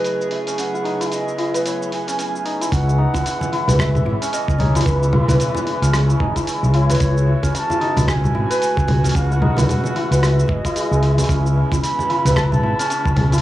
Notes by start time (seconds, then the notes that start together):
Already playing: C#3 F#3 A3 C#4 E4 G#4 B4 D#5
0.04 open hi-hat, shaker
0.21 shaker
0.31 E4 E5, open hi-hat
0.47 C#4, open hi-hat, shaker
0.58 B3 C#4 F#5, open hi-hat, shaker
0.74 E4, shaker
0.84 D#4, open hi-hat
1.00 E4, open hi-hat, shaker
1.12 D#5, open hi-hat, shaker
1.28 shaker
1.38 E4, open hi-hat
1.54 B4, open hi-hat, shaker
1.66 C#5, open hi-hat, shaker
1.82 shaker
1.92 E4 G#5, open hi-hat
2.07 C#4, open hi-hat, shaker
2.18 C#4, open hi-hat, shaker
2.34 E4, shaker
2.45 D#4, open hi-hat
2.61 E4, open hi-hat, shaker
2.72 C#2 C#3 E3 G#3 B3 C#4 F#5, kick, open hi-hat, shaker
2.87 E4, shaker
2.98 D#4
3.14 C#2 E4, kick, open hi-hat, muted conga, high conga, shaker
3.26 open hi-hat, shaker
3.41 muted conga, high conga, shaker
3.52 E4, open hi-hat
3.68 C#2 B4, open hi-hat, low conga, shaker
3.79 E5, kick, cross-stick, open hi-hat, shaker
3.95 low conga, shaker
4.05 G#1 E4, muted conga
4.21 C#4, open hi-hat, shaker
4.32 C#4 D#5, open hi-hat, shaker
4.48 C#2 E4, kick, shaker
4.58 D#4 C#5, open hi-hat, muted conga, low conga
4.75 E4, open hi-hat, high conga, shaker
4.81 open hi-hat
4.85 C#2 B4, kick, open hi-hat, shaker
5.03 shaker
5.13 E4, low conga
5.28 C#2 B4, open hi-hat, muted conga, high conga, low conga, shaker
5.40 open hi-hat, shaker
5.55 muted conga, high conga, shaker
5.66 E4, open hi-hat
5.82 C#2 C#4, open hi-hat, shaker
5.93 C#4, cross-stick, open hi-hat, shaker
6.09 E4, shaker
6.20 G#1 D#4, kick, high conga
6.36 E4, kick, open hi-hat, shaker
6.47 open hi-hat, shaker
6.63 C#2, shaker
6.74 E4 C#5, open hi-hat
6.90 B4, open hi-hat, high conga, shaker
6.95 open hi-hat
7.00 C#2 A3 F#4, kick, open hi-hat, shaker
7.17 shaker
7.27 E4
7.43 C#2 C#4, kick, open hi-hat, muted conga, high conga, shaker
7.54 C#4 B5, open hi-hat, shaker
7.59 A5
7.70 E4, muted conga, high conga, shaker
7.80 D#4, open hi-hat
7.97 C#2 E4, open hi-hat, low conga, shaker
8.08 G#5, kick, cross-stick, open hi-hat, shaker
8.24 low conga, shaker
8.34 G#1 E4, muted conga
8.50 B4, open hi-hat, shaker
8.62 open hi-hat, shaker
8.77 C#2, kick, shaker
8.88 E4, open hi-hat, muted conga, low conga
9.04 C#4, open hi-hat, high conga, shaker
9.09 open hi-hat
9.15 C#2 C#4 F#5, kick, open hi-hat, shaker
9.31 E4, shaker
9.42 D#4, low conga
9.57 C#2 E4, open hi-hat, muted conga, high conga, low conga, shaker
9.69 open hi-hat, low conga, shaker
9.84 muted conga, high conga, shaker
9.96 E4, open hi-hat
10.11 C#2 B4, open hi-hat, shaker
10.22 E5 F#5, cross-stick, open hi-hat, shaker
10.39 shaker
10.48 G#1 C#5 E5, kick, high conga
10.53 D#5
10.65 E4, kick, open hi-hat, shaker
10.76 G#3, open hi-hat, shaker
10.91 C#2 G#4, shaker
11.02 G#3 E5, open hi-hat
11.18 C#4, open hi-hat, high conga, shaker
11.24 open hi-hat
11.29 C#2 C#3 B3 C#4 E4, kick, open hi-hat, shaker
11.45 E4, shaker
11.56 C#4
11.72 C#2 E4, kick, open hi-hat, muted conga, high conga, shaker
11.83 B5, open hi-hat, shaker
11.99 muted conga, high conga, shaker
12.09 E4, open hi-hat
12.25 C#2 B4, open hi-hat, low conga, shaker
12.36 A5, kick, cross-stick, open hi-hat, shaker
12.45 B5
12.52 A5, low conga, shaker
12.63 G#1 E4, muted conga
12.79 C#4, open hi-hat, shaker
12.90 C#4, open hi-hat, shaker
13.05 C#2 E4, kick, shaker
13.16 C#4, open hi-hat, muted conga, low conga
13.32 E4, open hi-hat, high conga, shaker
13.38 open hi-hat